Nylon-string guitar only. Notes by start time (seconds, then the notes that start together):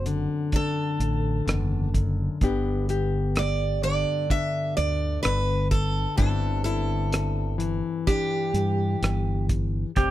Already playing: F#2 C4 D4 F#4
0.06 D3
0.53 D4
1.46 E2
1.94 F#2
2.42 G2 B3 D4 G4
2.90 G4
3.83 D3
4.30 D4
6.17 G2 C4 D4 E4
6.66 E4
7.58 E3
8.07 D4
9.95 F2 G3 C4 G4